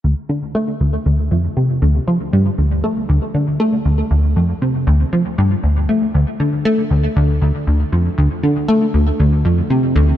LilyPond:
\new Staff \with { instrumentName = "Analog synth bass" } { \clef bass \time 4/4 \key d \minor \tempo 4 = 118 d,8 d8 a8 d,8 d,8 f,8 c8 d,8 | f8 g,8 d,8 a8 d,8 d8 a8 d,8 | d,8 f,8 c8 d,8 f8 g,8 d,8 a8 | d,8 d8 a8 d,8 d,8 d,8 d,8 f,8 |
d,8 d8 a8 d,8 d,8 f,8 c8 d,8 | }